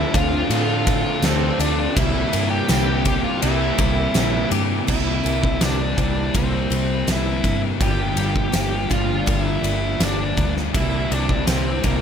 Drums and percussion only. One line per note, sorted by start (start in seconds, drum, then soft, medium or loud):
0.14 kick medium
0.14 ride medium
0.50 ride medium
0.87 kick medium
0.87 ride medium
1.22 snare loud
1.22 ride loud
1.22 tambourine loud
1.60 ride medium
1.97 kick loud
1.97 ride loud
2.33 ride medium
2.69 snare loud
2.69 ride loud
2.69 tambourine loud
3.05 kick medium
3.05 ride medium
3.42 ride loud
3.78 kick medium
3.78 ride medium
4.14 snare loud
4.14 ride loud
4.14 tambourine loud
4.51 ride medium
4.88 kick loud
4.88 crash loud
5.26 ride medium
5.44 kick medium
5.61 snare loud
5.61 ride medium
5.61 tambourine medium
5.98 kick medium
5.98 ride medium
6.35 kick loud
6.35 ride loud
6.72 ride medium
7.08 snare loud
7.08 ride loud
7.08 tambourine medium
7.44 kick medium
7.44 ride medium
7.81 kick loud
7.81 ride loud
8.17 ride medium
8.36 kick medium
8.53 snare loud
8.53 ride loud
8.53 tambourine medium
8.91 kick medium
8.91 ride medium
9.27 kick loud
9.27 ride loud
9.64 ride medium
10.00 snare loud
10.00 ride medium
10.00 tambourine loud
10.37 kick medium
10.37 ride medium
10.57 snare soft
10.74 kick loud
10.74 ride loud
11.12 ride medium
11.29 kick medium
11.47 snare loud
11.47 ride loud
11.47 tambourine medium
11.84 kick medium
11.84 ride medium